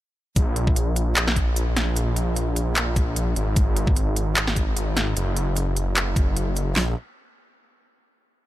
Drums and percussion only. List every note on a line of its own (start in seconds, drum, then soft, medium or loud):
0.36 kick loud
0.36 closed hi-hat medium
0.56 closed hi-hat medium
0.67 kick loud
0.76 closed hi-hat medium
0.96 closed hi-hat medium
1.16 clap loud
1.16 closed hi-hat medium
1.28 snare medium
1.36 kick medium
1.36 closed hi-hat medium
1.56 closed hi-hat medium
1.76 snare medium
1.76 closed hi-hat medium
1.96 closed hi-hat medium
2.16 closed hi-hat medium
2.36 closed hi-hat medium
2.56 closed hi-hat medium
2.76 clap loud
2.76 closed hi-hat medium
2.96 kick loud
2.96 closed hi-hat medium
3.16 closed hi-hat medium
3.36 closed hi-hat medium
3.56 kick loud
3.56 closed hi-hat medium
3.76 closed hi-hat medium
3.87 kick loud
3.96 closed hi-hat medium
4.16 closed hi-hat medium
4.36 clap loud
4.36 closed hi-hat medium
4.47 snare medium
4.56 kick medium
4.56 closed hi-hat medium
4.77 closed hi-hat medium
4.97 snare medium
4.97 closed hi-hat medium
5.17 closed hi-hat medium
5.37 closed hi-hat medium
5.57 closed hi-hat medium
5.77 closed hi-hat medium
5.97 clap loud
5.97 closed hi-hat medium
6.16 kick loud
6.16 closed hi-hat medium
6.37 closed hi-hat medium
6.57 closed hi-hat medium
6.76 snare loud
6.76 clap loud